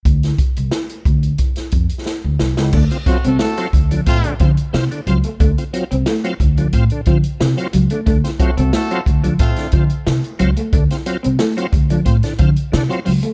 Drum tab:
CC |----------------|x---------------|----------------|----------------|
HH |xxxx-xxxxxxx----|-xxx-xxxxxxx-xxx|xxxx-xxxxxxx-xxx|xxxx-xxxxxxx-xxx|
SD |-o--o----o--o-oo|----o-------o---|----o-------o---|-o--o----o--o---|
BD |o-o---o-o-o-----|o-o---o-o-o-----|o-----o-o-o-----|o-o---o-o-o-----|

CC |----------------|
HH |xxxx-xxxxxxx-xox|
SD |-o--o----o--o---|
BD |o-----o-o-o-----|